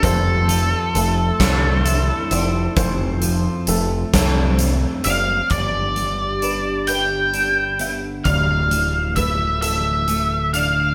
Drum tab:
HH |xxxxxx|xxxxxx|xxxxxx|xxxxxx|
SD |---o--|---o--|------|------|
BD |o--o--|o--o--|o-----|o-o---|